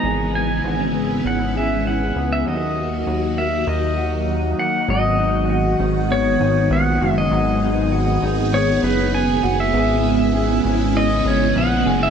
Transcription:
Already playing: clean electric guitar B3 D#4, pedal steel guitar A#5
0.03 analog synth bass G#1, string machine C#3 G#3 B3 E4, clean electric guitar E3 G#4
0.34 clean electric guitar B3, pedal steel guitar G#5
0.64 analog synth bass G#1, clean electric guitar B3
0.80 clean electric guitar C#4
0.95 clean electric guitar B3
1.25 analog synth bass G#1, clean electric guitar C#4, pedal steel guitar F#5
1.55 clean electric guitar G#4, pedal steel guitar E5
1.85 clean electric guitar C#4, pedal steel guitar F#5
2.16 analog synth bass C#2, clean electric guitar B3
2.33 pedal steel guitar E5
2.45 analog synth bass D#2, string machine D#3 F#3 A#3 F#4, clean electric guitar F#3 F#4, pedal steel guitar D#5
2.77 clean electric guitar A#3
3.07 analog synth bass D#2
3.38 clean electric guitar A#3, pedal steel guitar E5
3.67 analog synth bass D#2, clean electric guitar D#4, pedal steel guitar D#5
3.98 clean electric guitar F#4
4.28 clean electric guitar D#4
4.58 clean electric guitar A#3, pedal steel guitar F#5
4.87 analog synth bass G#1, string machine D#3 G#3 B3 F#4, clean electric guitar F#3 F#4, pedal steel guitar D#5
5.19 clean electric guitar D#4
5.50 clean electric guitar F#4
5.80 analog synth bass G#1, clean electric guitar D#4
6.10 clean electric guitar B3, pedal steel guitar C#5
6.40 analog synth bass G#1, clean electric guitar D#4
6.70 analog synth bass A#1, clean electric guitar B3, pedal steel guitar F#5
7.01 analog synth bass F#1, clean electric guitar F#4
7.18 pedal steel guitar D#5
7.31 analog synth bass G#1, clean electric guitar F#3 F#4, string machine G#4
7.62 clean electric guitar D#4
7.92 clean electric guitar F#4
8.22 analog synth bass G#1, clean electric guitar D#4
8.53 clean electric guitar B3, pedal steel guitar C#5
8.83 analog synth bass F#1, clean electric guitar D#4, pedal steel guitar B4
9.14 clean electric guitar B3, pedal steel guitar G#5
9.43 analog synth bass F#1, clean electric guitar F#4
9.60 pedal steel guitar E5
9.73 analog synth bass G#1, string machine C#3 G#3 E4, clean electric guitar B3 G#4
10.05 clean electric guitar C#4
10.35 clean electric guitar G#4
10.65 analog synth bass G#1, clean electric guitar C#4
10.96 clean electric guitar B3, pedal steel guitar D#5
11.25 analog synth bass G#1, clean electric guitar C#4, pedal steel guitar C#5
11.56 analog synth bass A#1, clean electric guitar B3, pedal steel guitar F#5
11.86 analog synth bass F#1, clean electric guitar G#4
12.03 pedal steel guitar E5

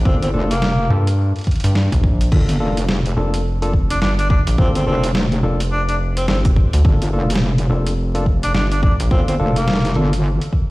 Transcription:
0.05 wobble bass G1, tine electric piano A#3 D4 F4 A4, tenor saxophone C4, kick
0.22 tenor saxophone C4, closed hi-hat
0.34 wobble bass F1, tine electric piano A#3 D4 F4 A4
0.51 tenor saxophone A#3, closed hi-hat
0.62 snare
0.90 analog synth bass G2, tine electric piano A#3 D4 F4 A4
1.07 closed hi-hat
1.36 closed hi-hat
1.39 closed hi-hat
1.41 closed hi-hat
1.44 closed hi-hat
1.47 kick, closed hi-hat
1.51 closed hi-hat
1.56 closed hi-hat
1.60 analog synth bass G2, closed hi-hat
1.64 closed hi-hat
1.75 snare
1.92 analog synth bass A#1, kick, closed hi-hat
2.04 kick
2.21 closed hi-hat
2.32 wobble bass G1, tine electric piano A#3 D4 F4 A4, kick, crash
2.49 closed hi-hat
2.60 wobble bass F1, tine electric piano A#3 D4 F4 A4
2.77 closed hi-hat
2.89 snare
3.06 closed hi-hat
3.17 analog synth bass F1, tine electric piano A#3 D4 F4 A4
3.34 closed hi-hat
3.62 tine electric piano A#3 D4 F4 A4, closed hi-hat
3.73 kick
3.90 tenor saxophone D4, closed hi-hat
4.02 analog synth bass G1, tenor saxophone D4, snare
4.19 tenor saxophone D4, closed hi-hat
4.30 tenor saxophone D4, kick
4.47 analog synth bass A#1, closed hi-hat
4.58 wobble bass G1, tine electric piano A#3 D4 F4 A4, tenor saxophone C4, kick
4.75 tenor saxophone C4, closed hi-hat
4.86 wobble bass F1, tine electric piano A#3 D4 F4 A4, tenor saxophone C4
5.04 closed hi-hat
5.15 snare
5.32 closed hi-hat
5.43 analog synth bass F1, tine electric piano A#3 D4 F4 A4
5.60 closed hi-hat
5.72 tenor saxophone D4
5.89 tenor saxophone D4, closed hi-hat
6.17 tenor saxophone C4, closed hi-hat
6.28 analog synth bass G1, tenor saxophone C4, snare
6.45 kick, closed hi-hat
6.56 kick
6.73 analog synth bass D2, closed hi-hat
6.85 wobble bass G1, tine electric piano A#3 D4 F4 A4, kick
7.02 closed hi-hat
7.13 wobble bass F1, tine electric piano A#3 D4 F4 A4
7.30 closed hi-hat
7.35 snare
7.58 closed hi-hat
7.70 analog synth bass F1, tine electric piano A#3 D4 F4 A4
7.87 closed hi-hat
8.15 tine electric piano A#3 D4 F4 A4, closed hi-hat
8.26 kick
8.43 tenor saxophone D4, closed hi-hat
8.54 analog synth bass G1, tenor saxophone D4, snare
8.71 tenor saxophone D4, closed hi-hat
8.83 tenor saxophone D4, kick
9.00 analog synth bass A#1, closed hi-hat
9.11 wobble bass G1, tine electric piano A#3 D4 F4 A4, tenor saxophone C4, kick
9.28 tenor saxophone C4, closed hi-hat
9.39 wobble bass F1, tine electric piano A#3 D4 F4 A4
9.56 tenor saxophone A#3, closed hi-hat
9.68 snare
9.73 snare
9.77 snare
9.85 snare, closed hi-hat
9.87 snare
9.92 wobble bass G1, tine electric piano A#3 D4 F4 A4, snare
10.13 closed hi-hat
10.41 closed hi-hat
10.53 kick

